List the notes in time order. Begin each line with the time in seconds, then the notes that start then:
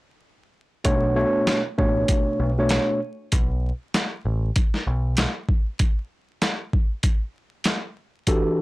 0.84 B1 B2 A3 D4 C#5, kick, closed hi-hat
1.15 B2 A3 D4 C#5
1.47 snare, closed hi-hat
1.77 A1 B2 A3 D4 C#5, kick
2.08 kick, closed hi-hat
2.40 B1
2.59 B2 A3 D4 C#5
2.69 snare, closed hi-hat
3.32 B1, kick, closed hi-hat
3.94 snare, closed hi-hat
4.25 A1
4.56 kick, closed hi-hat
4.74 snare
4.87 B1
5.17 snare, closed hi-hat
5.49 kick
5.79 kick, closed hi-hat
6.42 snare, closed hi-hat
6.73 kick
7.03 kick, closed hi-hat
7.64 snare, closed hi-hat
8.27 E3 D4 F#4 G4 A4, kick, closed hi-hat